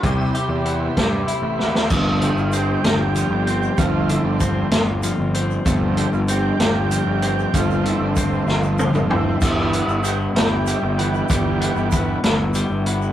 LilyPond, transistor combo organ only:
<<
  \new Staff \with { instrumentName = "Transistor combo organ" } { \time 6/8 \key g \mixolydian \tempo 4. = 64 <g' e'' b'' c'''>2. | r8 g'16 f'16 g'2 | f'8 e'16 d'16 c'8 r4. | r8 g'16 f'16 g'2 |
f'8 e'16 d'16 c'8 r4 e'8~ | e'4 g'8 g'4.~ | g'4 r2 | }
  \new Staff \with { instrumentName = "Transistor combo organ" } { \time 6/8 \key g \mixolydian r2. | <f a c'>8 r2 r8 | <f a c'>4. r4. | <f a c'>8 r2 r8 |
<f a c'>2. | <e g b>8 r2 <e g b>8 | <e g b>4. r4. | }
>>